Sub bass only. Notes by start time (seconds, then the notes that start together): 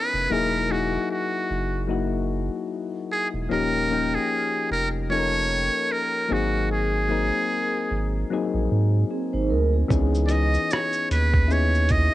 0.14 F1
0.30 E1
1.51 F#1
3.34 E1
3.51 D#1
4.71 F1
6.31 G#1
7.91 G#1
8.54 A#1
8.72 G#2
9.34 G#1
9.51 D2
9.91 C#2
11.11 D#2